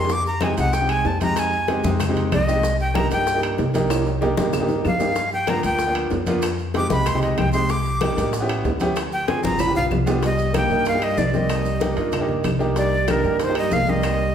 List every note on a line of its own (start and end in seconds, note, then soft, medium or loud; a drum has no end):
0.00 0.52 F2 medium
0.00 0.10 D4 medium
0.00 0.10 D#4 medium
0.00 0.11 G4 medium
0.00 0.14 C6 medium
0.05 low timbale medium
0.09 0.26 D6 loud
0.09 high bongo medium
0.09 high conga soft
0.09 maracas medium
0.25 0.44 A#5 medium
0.25 high conga soft
0.25 maracas soft
0.41 0.52 G#3 medium
0.41 0.53 C4 medium
0.41 0.53 D#4 medium
0.41 0.53 G4 medium
0.41 0.58 G#5 medium
0.41 high bongo medium
0.41 high conga medium
0.41 high timbale loud
0.41 low timbale medium
0.41 claves medium
0.41 maracas soft
0.57 1.02 C2 medium
0.57 0.74 G#3 medium
0.57 0.74 C4 medium
0.57 0.74 D#4 medium
0.57 0.75 G4 medium
0.57 0.75 F#5 medium
0.57 high bongo soft
0.57 high timbale medium
0.57 maracas medium
0.73 0.91 G5 medium
0.73 high bongo medium
0.73 high conga soft
0.73 maracas medium
0.80 1.08 G#3 medium
0.80 1.09 C4 medium
0.80 1.09 D#4 medium
0.80 1.09 G4 medium
0.89 1.08 G#5 loud
0.89 high bongo soft
0.89 high conga soft
0.89 high timbale loud
0.89 claves medium
0.89 maracas soft
1.05 1.78 F2 medium
1.05 1.21 A5 medium
1.05 high bongo soft
1.05 low bongo medium
1.05 high conga soft
1.05 low timbale medium
1.05 maracas soft
1.20 1.54 G#3 medium
1.20 1.54 C4 medium
1.20 1.54 D#4 medium
1.20 1.54 G4 medium
1.20 1.40 A#5 loud
1.20 high bongo soft
1.20 high conga medium
1.20 high timbale medium
1.20 maracas medium
1.36 1.85 G#5 medium
1.36 high bongo medium
1.36 high conga soft
1.36 high timbale medium
1.36 claves medium
1.36 maracas medium
1.52 high conga soft
1.52 maracas soft
1.68 1.79 G#3 medium
1.68 1.80 C4 medium
1.68 1.80 D#4 medium
1.68 1.80 G4 medium
1.68 high bongo medium
1.68 high conga medium
1.68 high timbale medium
1.68 low timbale medium
1.68 maracas soft
1.83 2.28 F2 medium
1.83 2.01 G#3 medium
1.83 2.01 C4 medium
1.83 2.02 D#4 medium
1.83 2.02 G4 loud
1.83 high bongo soft
1.83 high conga loud
1.83 maracas medium
2.00 high bongo medium
2.00 high conga soft
2.00 low conga medium
2.00 high timbale medium
2.00 claves medium
2.00 maracas medium
2.07 2.35 G#3 medium
2.07 2.36 C4 medium
2.07 2.36 D#4 medium
2.07 2.36 G4 medium
2.16 high bongo soft
2.16 high conga soft
2.16 low conga medium
2.16 high timbale medium
2.16 maracas soft
2.32 3.05 C2 medium
2.32 2.77 D#5 medium
2.32 high bongo soft
2.32 low bongo medium
2.32 high conga medium
2.32 high timbale medium
2.32 low timbale medium
2.32 claves medium
2.32 maracas soft
2.47 2.63 G#3 medium
2.47 2.64 C4 medium
2.47 2.64 D#4 medium
2.47 2.64 G4 medium
2.47 high bongo soft
2.47 maracas medium
2.63 high bongo medium
2.63 high conga soft
2.63 maracas loud
2.80 2.96 G5 loud
2.80 high conga soft
2.80 maracas soft
2.94 3.06 A#3 medium
2.94 3.06 D4 medium
2.94 3.06 D#4 medium
2.94 3.07 G4 medium
2.94 3.11 A#5 loud
2.94 high bongo medium
2.94 high conga loud
2.94 high timbale medium
2.94 low timbale medium
2.94 claves medium
2.94 maracas soft
3.10 3.55 G2 medium
3.10 3.27 A#3 medium
3.10 3.27 D4 medium
3.10 3.28 D#4 medium
3.10 3.28 G4 medium
3.10 3.41 G5 loud
3.10 high bongo soft
3.10 high timbale medium
3.10 maracas medium
3.27 high bongo medium
3.27 high conga soft
3.27 maracas medium
3.34 3.62 A#3 medium
3.34 3.62 D4 medium
3.34 3.63 D#4 medium
3.34 3.63 G4 medium
3.43 high bongo soft
3.43 high conga soft
3.43 high timbale loud
3.43 claves medium
3.43 maracas soft
3.58 4.32 C2 medium
3.58 high bongo soft
3.58 low bongo medium
3.58 high conga soft
3.58 low timbale medium
3.58 maracas soft
3.74 4.07 A#3 loud
3.74 4.07 D4 medium
3.74 4.08 D#4 medium
3.74 4.08 G4 loud
3.74 high bongo soft
3.74 high conga medium
3.74 high timbale medium
3.74 maracas medium
3.90 high bongo medium
3.90 high timbale medium
3.90 claves medium
3.90 maracas medium
4.06 high conga soft
4.06 high timbale medium
4.06 maracas soft
4.21 4.32 A#3 loud
4.21 4.33 D4 medium
4.21 4.33 D#4 medium
4.21 4.33 G4 loud
4.21 high bongo medium
4.21 high conga medium
4.21 low timbale medium
4.21 maracas soft
4.37 4.82 G2 loud
4.37 4.54 A#3 medium
4.37 4.54 D4 medium
4.37 4.54 D#4 medium
4.37 4.54 G4 loud
4.37 high bongo loud
4.37 high conga loud
4.37 low timbale medium
4.37 maracas medium
4.53 high bongo medium
4.53 high conga soft
4.53 low conga medium
4.53 low timbale medium
4.53 claves medium
4.53 maracas medium
4.60 4.88 A#3 medium
4.60 4.88 D4 medium
4.60 4.88 D#4 medium
4.60 4.89 G4 medium
4.69 low bongo medium
4.69 high conga soft
4.69 maracas soft
4.85 5.58 G2 medium
4.85 5.30 F5 medium
4.85 low bongo medium
4.85 high conga medium
4.85 low timbale medium
4.85 claves medium
4.85 maracas soft
4.99 5.16 A#3 medium
4.99 5.16 D4 medium
4.99 5.16 D#4 medium
4.99 5.16 G4 medium
4.99 low bongo medium
4.99 high conga soft
4.99 low timbale medium
4.99 maracas medium
5.15 high bongo medium
5.15 high conga soft
5.15 maracas medium
5.31 5.51 G5 loud
5.31 high conga soft
5.31 maracas soft
5.47 5.59 A#3 medium
5.47 5.59 B3 medium
5.47 5.59 D4 medium
5.47 5.59 F4 medium
5.47 5.64 A#5 loud
5.47 high bongo medium
5.47 high conga loud
5.47 high timbale loud
5.47 low timbale medium
5.47 claves medium
5.47 maracas soft
5.63 6.08 D2 medium
5.63 5.80 A#3 medium
5.63 5.80 B3 medium
5.63 5.81 D4 medium
5.63 5.81 F4 medium
5.63 5.94 G5 loud
5.63 high bongo soft
5.63 high timbale medium
5.63 maracas medium
5.79 high bongo medium
5.79 high conga soft
5.79 maracas medium
5.86 6.15 A#3 medium
5.86 6.15 B3 medium
5.86 6.15 D4 medium
5.86 6.15 F4 medium
5.94 high bongo soft
5.94 high conga soft
5.94 high timbale loud
5.94 claves medium
5.94 maracas soft
6.11 6.85 F2 medium
6.11 high bongo soft
6.11 low bongo medium
6.11 high conga soft
6.11 low timbale medium
6.11 maracas soft
6.26 6.43 A#3 medium
6.26 6.43 B3 medium
6.26 6.43 D4 medium
6.26 6.43 F4 loud
6.26 high bongo soft
6.26 high conga medium
6.26 high timbale medium
6.26 maracas medium
6.42 high bongo medium
6.42 high conga soft
6.42 high timbale loud
6.42 claves medium
6.42 maracas loud
6.58 high conga soft
6.58 maracas soft
6.74 6.86 G#3 medium
6.74 6.86 C4 medium
6.74 6.86 D#4 medium
6.74 6.86 G4 loud
6.74 6.90 D6 medium
6.74 high bongo medium
6.74 high conga medium
6.74 high timbale medium
6.74 low timbale medium
6.74 maracas soft
6.90 7.34 C2 medium
6.90 7.07 G#3 medium
6.90 7.07 C4 medium
6.90 7.07 D#4 medium
6.90 7.07 G4 medium
6.90 7.09 B5 loud
6.90 high bongo soft
6.90 high conga loud
6.90 maracas medium
7.06 7.22 C6 loud
7.06 high bongo medium
7.06 high conga soft
7.06 low conga medium
7.06 high timbale loud
7.06 claves medium
7.06 maracas medium
7.13 7.42 G#3 medium
7.13 7.42 C4 medium
7.13 7.42 D#4 medium
7.13 7.42 G4 medium
7.22 7.40 D#5 medium
7.22 high bongo soft
7.22 high conga soft
7.22 high timbale medium
7.22 maracas soft
7.37 8.11 C2 medium
7.37 7.52 G5 medium
7.37 high bongo soft
7.37 low bongo medium
7.37 high conga medium
7.37 high timbale medium
7.37 low timbale medium
7.37 claves medium
7.37 maracas soft
7.53 7.69 G#3 medium
7.53 7.69 C4 medium
7.53 7.70 D#4 medium
7.53 7.70 G4 medium
7.53 7.72 C6 loud
7.53 high bongo soft
7.53 high conga soft
7.53 maracas medium
7.69 8.33 D6 medium
7.69 high bongo medium
7.69 maracas medium
7.85 high conga soft
7.85 maracas soft
8.01 8.12 A#3 medium
8.01 8.13 D4 medium
8.01 8.13 D#4 medium
8.01 8.13 G4 medium
8.01 high bongo medium
8.01 high conga loud
8.01 high timbale medium
8.01 low timbale medium
8.01 claves medium
8.01 maracas soft
8.16 8.61 A1 loud
8.16 8.32 A#3 medium
8.16 8.33 D4 medium
8.16 8.33 D#4 medium
8.16 8.33 G4 medium
8.16 high bongo soft
8.16 high timbale medium
8.16 maracas medium
8.33 high bongo medium
8.33 high conga soft
8.33 maracas medium
8.40 8.68 B3 loud
8.40 8.69 C#4 medium
8.40 8.69 E4 medium
8.40 8.69 G4 loud
8.48 high bongo soft
8.48 high conga soft
8.48 high timbale loud
8.48 claves medium
8.48 maracas soft
8.64 9.38 D2 medium
8.64 high bongo soft
8.64 low bongo medium
8.64 high conga soft
8.64 low timbale medium
8.64 maracas soft
8.80 8.96 B3 loud
8.80 8.96 C#4 medium
8.80 8.97 E4 medium
8.80 8.97 G4 loud
8.80 high bongo soft
8.80 high conga medium
8.80 high timbale medium
8.80 maracas medium
8.96 high bongo medium
8.96 high conga soft
8.96 high timbale medium
8.96 claves medium
8.96 maracas medium
9.12 9.30 G5 loud
9.12 high conga soft
9.12 maracas soft
9.27 9.39 C4 medium
9.27 9.39 D4 medium
9.27 9.39 F4 medium
9.27 9.39 G#4 medium
9.27 9.44 G#5 medium
9.27 high bongo loud
9.27 high conga medium
9.27 high timbale medium
9.27 low timbale medium
9.27 maracas soft
9.42 9.73 G1 loud
9.42 9.59 C4 medium
9.42 9.59 D4 medium
9.42 9.59 F4 medium
9.42 9.60 G#4 medium
9.42 9.61 A#5 loud
9.42 low bongo medium
9.42 high conga loud
9.42 maracas medium
9.59 9.75 B5 loud
9.59 low bongo loud
9.59 high conga soft
9.59 low conga medium
9.59 high timbale loud
9.59 claves medium
9.59 maracas medium
9.67 9.95 B3 medium
9.67 9.95 D4 medium
9.67 9.95 F4 medium
9.67 9.96 G4 medium
9.75 9.90 B1 medium
9.75 9.85 F5 medium
9.75 low bongo loud
9.75 high conga soft
9.75 maracas soft
9.91 10.64 C2 medium
9.91 low bongo medium
9.91 high conga medium
9.91 low timbale medium
9.91 claves medium
9.91 maracas soft
10.06 10.22 B3 loud
10.06 10.23 D4 medium
10.06 10.23 F4 medium
10.06 10.23 G4 loud
10.06 low bongo medium
10.06 high conga soft
10.06 low timbale medium
10.06 maracas medium
10.22 10.53 G3 medium
10.22 10.54 D#5 medium
10.22 high bongo medium
10.22 high conga soft
10.22 high timbale medium
10.22 maracas medium
10.38 high conga soft
10.38 maracas medium
10.53 10.65 A#3 medium
10.53 10.84 A#3 medium
10.53 10.65 D4 medium
10.53 10.65 D#4 medium
10.53 10.66 G4 medium
10.53 high bongo medium
10.53 high conga loud
10.53 high timbale medium
10.53 low timbale medium
10.53 claves medium
10.53 maracas medium
10.57 10.85 G5 loud
10.70 11.14 G2 loud
10.70 10.87 A#3 medium
10.70 10.87 D4 medium
10.70 10.87 D#4 medium
10.70 10.87 A#4 medium
10.70 high bongo soft
10.70 high conga soft
10.70 maracas soft
10.85 11.03 A#3 medium
10.85 11.05 F5 loud
10.85 high bongo medium
10.85 high conga soft
10.85 high timbale medium
10.85 maracas medium
10.93 11.21 A#3 medium
10.93 11.22 D4 medium
10.93 11.22 D#4 medium
10.93 11.22 G4 medium
11.01 11.18 G3 medium
11.01 11.20 D#5 medium
11.01 high bongo soft
11.01 high conga soft
11.01 high timbale medium
11.01 claves medium
11.17 11.91 C2 medium
11.17 11.34 G3 medium
11.17 11.37 D5 medium
11.17 high bongo soft
11.17 low bongo medium
11.17 high conga medium
11.17 low timbale medium
11.17 maracas medium
11.33 12.29 G3 medium
11.33 11.67 A#3 medium
11.33 11.67 C4 medium
11.33 11.67 D#4 medium
11.33 11.67 G4 medium
11.33 12.29 D#5 medium
11.33 high bongo soft
11.33 high conga medium
11.33 maracas soft
11.49 high bongo medium
11.49 high timbale medium
11.49 claves medium
11.49 maracas medium
11.65 high conga soft
11.65 maracas medium
11.80 11.92 A#3 loud
11.80 11.92 D4 medium
11.80 11.92 D#4 medium
11.80 11.93 G4 loud
11.80 high bongo medium
11.80 high conga loud
11.80 high timbale medium
11.80 low timbale medium
11.80 maracas medium
11.96 12.41 G2 medium
11.96 12.13 A#3 medium
11.96 12.13 D4 medium
11.96 12.13 D#4 medium
11.96 12.13 F4 medium
11.96 high bongo soft
11.96 high conga soft
11.96 high timbale medium
11.96 maracas soft
12.12 high bongo medium
12.12 high conga soft
12.12 low conga medium
12.12 high timbale medium
12.12 claves medium
12.12 maracas medium
12.20 12.48 A#3 medium
12.20 12.48 D4 medium
12.20 12.48 D#4 medium
12.20 12.48 G4 medium
12.29 high bongo soft
12.29 high conga soft
12.29 low conga medium
12.44 13.18 C2 medium
12.44 high bongo soft
12.44 low bongo medium
12.44 high conga medium
12.44 high timbale medium
12.44 low timbale medium
12.44 claves medium
12.44 maracas medium
12.59 12.93 A#3 medium
12.59 12.93 D4 medium
12.59 12.93 D#4 medium
12.59 12.94 G4 loud
12.59 high bongo soft
12.59 maracas soft
12.76 13.10 G3 medium
12.76 13.12 D5 medium
12.76 high bongo medium
12.76 high conga soft
12.76 high timbale medium
12.76 maracas medium
12.92 high conga soft
13.08 13.39 D3 medium
13.08 13.19 A#3 medium
13.08 13.19 D4 medium
13.08 13.19 D#4 medium
13.08 13.19 G4 medium
13.08 13.41 A#4 medium
13.08 high bongo medium
13.08 high conga medium
13.08 high timbale medium
13.08 low timbale medium
13.08 claves medium
13.08 maracas medium
13.23 13.68 G2 medium
13.23 13.40 A#3 medium
13.23 13.41 D4 medium
13.23 13.41 D#4 medium
13.23 13.41 G4 medium
13.23 high bongo soft
13.23 high conga soft
13.23 maracas soft
13.40 13.54 D#3 medium
13.40 13.56 C5 loud
13.40 high bongo medium
13.40 high conga soft
13.40 high timbale medium
13.40 maracas medium
13.48 13.75 A#3 medium
13.48 13.75 D4 medium
13.48 13.76 D#4 medium
13.48 13.76 G4 medium
13.55 13.73 G3 medium
13.55 13.74 D#5 loud
13.55 high bongo soft
13.55 high conga soft
13.55 high timbale loud
13.55 claves medium
13.71 14.35 C2 medium
13.71 13.90 A#3 medium
13.71 13.91 F5 loud
13.71 high bongo soft
13.71 low bongo medium
13.71 high conga medium
13.71 low timbale medium
13.71 maracas medium
13.87 14.35 G3 medium
13.87 14.20 A#3 medium
13.87 14.21 C4 medium
13.87 14.21 D#4 medium
13.87 14.21 G4 medium
13.87 14.35 D#5 loud
13.87 high bongo soft
13.87 high conga medium
13.87 maracas soft
14.03 high bongo medium
14.03 high timbale medium
14.03 claves medium
14.03 maracas medium
14.19 high conga soft